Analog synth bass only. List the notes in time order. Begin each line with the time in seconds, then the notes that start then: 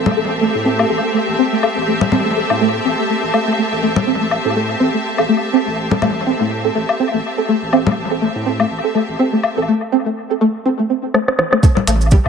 Already playing: A1
0.17 A1
0.55 A2
0.90 A1
1.28 A1
1.77 A1
2.12 A1
2.50 A2
2.85 A1
3.23 A1
3.72 A1
4.07 A1
4.45 A2
4.80 A1
5.18 A1
5.67 A1
6.02 A1
6.40 A2
6.75 A1
7.14 A1
7.62 A1
7.97 A1
8.35 A2
8.70 A1
9.09 A1
9.57 A1
11.87 A1
12.26 A2